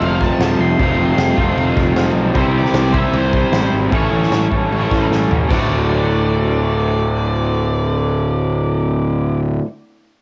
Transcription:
0.00 0.30 F1 loud
0.00 0.77 F2 medium
0.00 0.78 C3 medium
0.00 0.79 F3 medium
0.00 0.78 A3 medium
0.00 0.82 C4 medium
0.00 0.77 F4 medium
0.00 0.22 F5 loud
0.00 crash medium
0.21 0.62 A5 loud
0.21 kick medium
0.21 snare soft
0.39 0.54 D1 loud
0.39 snare loud
0.39 crash medium
0.59 0.74 F1 medium
0.59 2.13 C6 loud
0.78 0.94 F1 medium
0.78 1.36 F2 medium
0.78 1.37 C3 medium
0.78 1.37 F3 medium
0.78 1.38 A3 medium
0.78 kick loud
0.78 crash medium
0.83 1.38 C4 loud
0.83 1.35 F4 loud
0.97 1.13 F1 medium
1.17 1.32 F1 medium
1.17 snare loud
1.17 crash medium
1.36 1.52 F1 loud
1.36 2.36 F3 medium
1.36 2.35 A3 medium
1.36 2.35 C4 medium
1.36 2.34 F4 medium
1.36 kick loud
1.41 2.33 F2 medium
1.41 2.32 C3 medium
1.57 1.72 F1 medium
1.57 crash medium
1.77 1.91 F1 loud
1.77 kick medium
1.77 snare soft
1.95 2.10 F1 loud
1.95 snare loud
1.95 crash medium
2.15 2.30 B1 medium
2.34 2.65 C2 medium
2.34 2.92 C3 medium
2.34 2.93 G3 medium
2.34 2.94 C4 medium
2.34 2.94 E4 medium
2.34 2.42 C5 loud
2.34 kick loud
2.34 crash medium
2.38 2.92 G4 loud
2.38 2.91 C5 medium
2.58 2.96 D5 loud
2.65 snare soft
2.73 3.03 C2 medium
2.73 snare loud
2.73 crash medium
2.92 3.91 G3 medium
2.92 3.92 C4 medium
2.92 3.91 E4 medium
2.92 3.91 G4 medium
2.92 3.90 C5 medium
2.92 kick loud
2.97 3.90 C3 medium
2.97 3.17 E5 loud
3.14 3.43 C2 loud
3.14 3.36 C5 loud
3.14 crash medium
3.33 3.72 C5 loud
3.33 kick medium
3.52 3.68 A1 loud
3.52 snare loud
3.52 crash medium
3.73 3.88 G#1 medium
3.90 4.07 A1 medium
3.90 4.49 A2 medium
3.90 4.50 E3 loud
3.90 4.51 A3 medium
3.90 4.51 C#4 loud
3.90 kick loud
3.90 crash medium
3.95 4.50 E4 loud
3.95 4.48 A4 loud
3.95 5.08 C#5 medium
4.12 4.27 A1 medium
4.23 snare soft
4.31 4.46 A1 loud
4.31 snare loud
4.31 crash medium
4.50 4.67 A1 medium
4.50 5.49 A3 medium
4.50 5.49 C#4 medium
4.50 5.48 E4 medium
4.50 5.48 A4 medium
4.50 kick medium
4.54 5.48 A2 medium
4.54 5.50 E3 medium
4.71 4.86 A1 medium
4.71 crash medium
4.91 5.06 A1 loud
4.91 kick medium
4.91 snare soft
5.10 5.25 A1 loud
5.10 snare medium
5.29 5.44 A1 medium
5.29 floor tom loud
5.49 9.59 D1 loud
5.49 9.61 D2 medium
5.49 9.63 A2 medium
5.49 9.63 D3 medium
5.49 9.65 A3 loud
5.49 9.40 D5 medium
5.49 kick loud
5.49 crash medium
5.53 9.65 F#4 loud

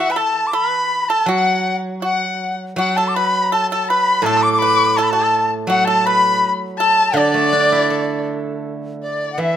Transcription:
0.00 0.54 E3 medium
0.00 0.19 E5 medium
0.00 0.13 F#5 medium
0.10 0.16 B4 medium
0.10 0.19 B5 medium
0.16 0.51 A4 medium
0.16 0.53 A5 medium
0.16 0.48 A5 medium
0.47 0.56 D6 medium
0.53 1.05 B4 medium
0.53 1.10 B5 medium
0.53 1.11 B5 loud
1.08 1.27 A4 medium
1.08 1.27 A5 medium
1.08 1.30 A5 medium
1.26 2.75 F#3 medium
1.26 1.73 F#4 medium
1.26 1.75 F#5 medium
1.26 1.76 F#5 loud
2.02 2.55 F#4 medium
2.02 2.55 F#5 medium
2.02 2.56 F#5 medium
2.76 4.96 F#3 medium
2.76 2.96 F#4 medium
2.76 2.99 F#5 medium
2.76 2.98 F#5 loud
2.96 3.14 A4 medium
2.96 3.09 A5 medium
2.96 3.18 A5 medium
3.08 3.17 D6 medium
3.15 3.50 B4 medium
3.15 3.52 B5 medium
3.15 3.54 B5 medium
3.52 3.69 A4 medium
3.52 3.69 A5 medium
3.70 3.88 A4 medium
3.70 3.90 A5 medium
3.70 3.88 A5 medium
3.89 4.23 B4 medium
3.89 4.25 B5 loud
3.89 4.26 B5 loud
4.22 6.40 A2 medium
4.22 4.38 A5 medium
4.22 4.45 A5 loud
4.26 4.59 A4 medium
4.37 4.43 E6 medium
4.41 4.99 D6 loud
4.41 4.52 D6 loud
4.53 4.60 D6 medium
4.59 4.95 B4 medium
4.59 4.98 B5 loud
4.97 5.11 A4 medium
4.97 5.05 A5 medium
4.97 5.10 A5 medium
5.03 5.12 B5 medium
5.10 5.50 A4 medium
5.10 5.51 A5 medium
5.10 5.48 A5 medium
5.67 7.88 F#3 medium
5.67 5.86 F#4 medium
5.67 5.87 F#5 medium
5.67 5.86 F#5 loud
5.85 6.04 A4 medium
5.85 6.07 A5 medium
5.85 6.08 A5 loud
6.06 6.50 B4 medium
6.06 6.52 B5 medium
6.06 6.53 B5 loud
6.78 7.14 A4 medium
6.78 7.19 A5 loud
6.78 7.19 A5 medium
7.14 9.38 D3 medium
7.14 8.24 D4 medium
7.14 8.28 D5 medium
7.18 8.28 D5 loud
7.34 8.84 A3 medium
7.53 9.02 D4 soft
7.72 9.21 E4 medium
7.90 9.40 A4 soft
9.03 9.30 D5 medium
9.03 9.41 D5 medium
9.32 9.42 F#5 medium
9.38 9.57 E3 medium
9.38 9.57 E5 medium

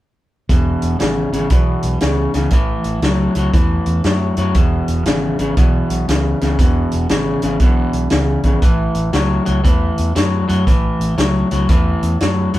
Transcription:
0.49 0.73 E1 loud
0.49 0.96 E2 medium
0.49 0.97 B2 medium
0.49 kick loud
0.49 closed hi-hat medium
0.82 0.96 E1 medium
0.82 closed hi-hat medium
0.99 1.25 G#1 medium
0.99 1.29 E2 medium
0.99 1.29 C#3 medium
0.99 snare loud
0.99 closed hi-hat medium
1.32 1.46 G#1 medium
1.32 1.49 E2 medium
1.32 1.49 C#3 medium
1.32 closed hi-hat medium
1.50 1.75 B1 medium
1.50 1.98 E2 medium
1.50 1.98 B2 medium
1.50 kick loud
1.50 closed hi-hat medium
1.83 1.97 B1 medium
1.83 closed hi-hat medium
2.00 2.26 C#2 medium
2.00 2.31 E2 medium
2.00 2.31 C#3 medium
2.00 snare medium
2.00 closed hi-hat medium
2.34 2.48 C#2 medium
2.34 2.51 E2 medium
2.34 2.51 C#3 medium
2.34 snare soft
2.34 closed hi-hat medium
2.50 2.76 A1 loud
2.50 3.00 A2 medium
2.50 3.00 E3 medium
2.50 kick loud
2.50 closed hi-hat medium
2.84 2.98 A1 medium
2.84 closed hi-hat medium
3.02 3.27 C#2 medium
3.02 3.33 A2 medium
3.02 3.33 F#3 medium
3.02 snare medium
3.02 closed hi-hat medium
3.35 3.49 C#2 medium
3.35 3.53 A2 medium
3.35 3.53 F#3 medium
3.35 closed hi-hat medium
3.54 3.78 E2 medium
3.54 4.01 A2 medium
3.54 4.02 E3 medium
3.54 kick loud
3.54 closed hi-hat medium
3.86 4.00 E2 medium
3.86 closed hi-hat medium
4.04 4.29 F#2 medium
4.04 4.34 A2 medium
4.04 4.35 F#3 medium
4.04 snare loud
4.04 closed hi-hat medium
4.37 4.51 F#2 medium
4.37 4.54 A2 medium
4.37 4.54 F#3 medium
4.37 closed hi-hat medium
4.54 4.79 E1 medium
4.54 5.03 E2 medium
4.54 5.03 B2 medium
4.54 kick loud
4.54 closed hi-hat medium
4.88 5.02 E1 medium
4.88 closed hi-hat medium
5.05 5.31 G#1 medium
5.05 5.36 E2 medium
5.05 5.36 C#3 medium
5.05 snare loud
5.05 closed hi-hat medium
5.39 5.53 G#1 medium
5.39 5.56 E2 medium
5.39 5.56 C#3 medium
5.39 closed hi-hat medium
5.57 5.81 B1 medium
5.57 6.05 E2 medium
5.57 6.05 B2 medium
5.57 kick loud
5.57 closed hi-hat medium
5.90 6.03 B1 medium
5.90 closed hi-hat medium
6.08 6.32 C#2 medium
6.08 6.38 E2 medium
6.08 6.38 C#3 medium
6.08 snare medium
6.08 closed hi-hat medium
6.41 6.55 C#2 medium
6.41 6.58 E2 medium
6.41 6.58 C#3 medium
6.41 snare soft
6.41 closed hi-hat medium
6.59 6.83 E1 loud
6.59 7.07 E2 medium
6.59 7.07 B2 medium
6.59 kick loud
6.59 closed hi-hat medium
6.91 7.06 E1 medium
6.91 closed hi-hat medium
7.09 7.34 G#1 medium
7.09 7.40 E2 medium
7.09 7.40 C#3 medium
7.09 snare loud
7.09 closed hi-hat medium
7.42 7.56 G#1 medium
7.42 7.59 E2 medium
7.42 7.60 C#3 medium
7.42 closed hi-hat medium
7.60 7.85 B1 medium
7.60 8.08 E2 medium
7.60 8.09 B2 medium
7.60 kick loud
7.60 closed hi-hat medium
7.93 8.06 B1 medium
7.93 closed hi-hat medium
8.10 8.36 C#2 medium
8.10 8.41 E2 medium
8.10 8.41 C#3 medium
8.10 snare loud
8.10 closed hi-hat medium
8.43 8.62 G#1 medium
8.43 8.61 E2 medium
8.43 8.61 C#3 medium
8.43 kick medium
8.43 closed hi-hat medium
8.62 8.87 A1 loud
8.62 9.10 A2 medium
8.62 9.10 E3 medium
8.62 kick loud
8.62 closed hi-hat medium
8.95 9.09 A1 medium
8.95 closed hi-hat medium
9.13 9.38 C#2 medium
9.13 9.43 A2 medium
9.13 9.43 F#3 medium
9.13 snare loud
9.13 closed hi-hat medium
9.45 9.61 C#2 medium
9.45 9.63 A2 medium
9.45 9.63 F#3 medium
9.45 closed hi-hat medium
9.64 9.89 E2 medium
9.64 10.12 A2 medium
9.64 10.12 E3 medium
9.64 kick loud
9.64 closed hi-hat medium
9.98 10.11 E2 medium
9.98 closed hi-hat medium
10.15 10.40 F#2 medium
10.15 10.45 A2 medium
10.15 10.46 F#3 medium
10.15 snare loud
10.15 closed hi-hat medium
10.48 10.63 F#2 medium
10.48 10.65 A2 medium
10.48 10.65 F#3 medium
10.48 closed hi-hat medium
10.67 10.91 A1 medium
10.67 11.14 A2 medium
10.67 11.15 E3 medium
10.67 kick loud
10.67 closed hi-hat medium
11.00 11.13 A1 medium
11.00 closed hi-hat medium
11.18 11.42 C#2 medium
11.18 11.48 A2 medium
11.18 11.48 F#3 medium
11.18 snare loud
11.18 closed hi-hat medium
11.51 11.65 C#2 medium
11.51 11.68 A2 medium
11.51 11.68 F#3 medium
11.51 closed hi-hat medium
11.69 11.93 E2 medium
11.69 12.17 A2 medium
11.69 12.17 E3 medium
11.69 kick loud
11.69 closed hi-hat medium
12.02 12.16 E2 medium
12.02 closed hi-hat medium
12.20 12.45 F#2 medium
12.20 12.51 A2 medium
12.20 12.51 F#3 medium
12.20 snare loud
12.20 closed hi-hat medium
12.54 12.59 F#2 medium
12.54 12.59 A2 medium
12.54 12.59 F#3 medium
12.54 closed hi-hat medium

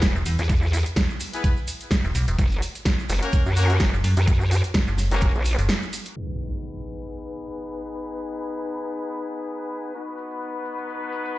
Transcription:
0.02 0.13 E1 loud
0.02 kick loud
0.02 snare loud
0.02 closed hi-hat medium
0.02 ride medium
0.02 maracas soft
0.15 0.24 E1 loud
0.15 maracas soft
0.26 0.37 E2 loud
0.26 open hi-hat loud
0.26 maracas medium
0.39 0.84 E2 loud
0.39 closed hi-hat medium
0.39 maracas soft
0.50 kick loud
0.50 closed hi-hat medium
0.50 ride medium
0.50 maracas medium
0.63 maracas soft
0.73 open hi-hat loud
0.73 maracas medium
0.86 closed hi-hat medium
0.86 maracas soft
0.96 kick loud
0.96 snare loud
0.96 closed hi-hat medium
0.96 ride medium
0.96 maracas soft
1.10 maracas soft
1.20 open hi-hat loud
1.20 maracas loud
1.33 1.54 B3 medium
1.33 1.54 E4 medium
1.33 1.54 G#4 medium
1.33 1.54 B4 medium
1.33 closed hi-hat medium
1.33 maracas soft
1.44 kick loud
1.44 closed hi-hat medium
1.44 ride medium
1.44 maracas medium
1.57 maracas soft
1.68 open hi-hat loud
1.68 maracas medium
1.81 closed hi-hat medium
1.81 maracas soft
1.91 kick loud
1.91 snare loud
1.91 closed hi-hat medium
1.91 ride medium
1.91 maracas soft
2.04 2.13 E1 loud
2.04 maracas soft
2.15 2.26 B1 loud
2.15 open hi-hat loud
2.15 maracas loud
2.28 2.37 E1 loud
2.28 closed hi-hat medium
2.28 maracas soft
2.39 2.61 F#1 loud
2.39 kick loud
2.39 closed hi-hat medium
2.39 ride medium
2.39 maracas medium
2.51 maracas soft
2.62 open hi-hat medium
2.62 maracas medium
2.75 closed hi-hat medium
2.75 maracas soft
2.85 kick loud
2.85 snare loud
2.85 closed hi-hat medium
2.85 ride medium
2.85 maracas medium
2.99 maracas soft
3.09 3.20 F#1 loud
3.09 open hi-hat loud
3.09 maracas medium
3.23 3.43 A#3 loud
3.23 3.43 C#4 medium
3.23 3.43 F#4 medium
3.23 3.43 A#4 loud
3.23 closed hi-hat medium
3.23 maracas soft
3.33 kick loud
3.33 closed hi-hat medium
3.33 ride medium
3.33 maracas medium
3.46 3.79 F#2 loud
3.46 maracas soft
3.56 3.77 A#3 loud
3.56 3.77 C#4 medium
3.56 3.77 F#4 medium
3.56 3.77 A#4 loud
3.56 open hi-hat loud
3.56 maracas medium
3.70 closed hi-hat medium
3.70 maracas soft
3.80 3.91 F#1 loud
3.80 kick loud
3.80 snare loud
3.80 closed hi-hat medium
3.80 ride medium
3.80 maracas medium
3.93 4.02 F#1 loud
3.93 maracas soft
4.04 4.15 F#2 loud
4.04 open hi-hat loud
4.04 maracas medium
4.17 4.62 F#2 medium
4.17 closed hi-hat medium
4.17 maracas soft
4.28 kick loud
4.28 closed hi-hat medium
4.28 ride medium
4.28 maracas medium
4.41 maracas soft
4.51 open hi-hat loud
4.51 maracas medium
4.64 closed hi-hat medium
4.64 maracas soft
4.74 kick loud
4.74 snare loud
4.74 closed hi-hat medium
4.74 ride medium
4.74 maracas soft
4.87 5.09 F#1 loud
4.87 maracas soft
4.98 snare soft
4.98 open hi-hat loud
4.98 maracas medium
5.11 5.33 F#1 loud
5.11 5.32 A#3 medium
5.11 5.32 C#4 medium
5.11 5.32 F#4 medium
5.11 5.32 A#4 loud
5.11 closed hi-hat medium
5.11 maracas soft
5.21 kick loud
5.21 closed hi-hat medium
5.21 ride medium
5.21 maracas medium
5.35 5.57 A#1 loud
5.35 maracas soft
5.45 open hi-hat loud
5.45 maracas medium
5.59 5.69 F#1 medium
5.59 closed hi-hat medium
5.59 maracas soft
5.69 snare loud
5.69 closed hi-hat medium
5.69 ride medium
5.69 maracas medium
5.83 maracas soft
5.93 open hi-hat loud
5.93 maracas medium
6.06 closed hi-hat medium
6.06 maracas soft
6.16 9.92 B3 medium
6.16 9.92 D#4 medium
6.16 9.92 G#4 medium
6.16 9.92 B4 medium
6.16 closed hi-hat soft
6.16 crash medium
6.16 impact medium
6.53 closed hi-hat medium
6.64 closed hi-hat soft
7.00 closed hi-hat medium
7.11 closed hi-hat soft
7.48 closed hi-hat medium
7.58 closed hi-hat soft
7.95 closed hi-hat medium
8.05 closed hi-hat soft
8.42 closed hi-hat medium
8.53 closed hi-hat soft
8.89 closed hi-hat medium
9.00 closed hi-hat soft
9.37 closed hi-hat medium
9.47 closed hi-hat soft
9.84 closed hi-hat medium
9.94 11.38 B3 medium
9.94 11.38 D#4 medium
9.94 11.38 F#4 medium
9.94 11.38 B4 medium
9.94 closed hi-hat soft
9.94 maracas soft
10.08 maracas soft
10.18 maracas medium
10.31 closed hi-hat medium
10.31 maracas soft
10.42 closed hi-hat soft
10.42 maracas soft
10.55 maracas soft
10.65 maracas medium
10.78 closed hi-hat medium
10.78 maracas soft
10.89 closed hi-hat soft
10.89 maracas medium
11.02 maracas soft
11.12 maracas medium
11.26 closed hi-hat medium
11.26 maracas soft

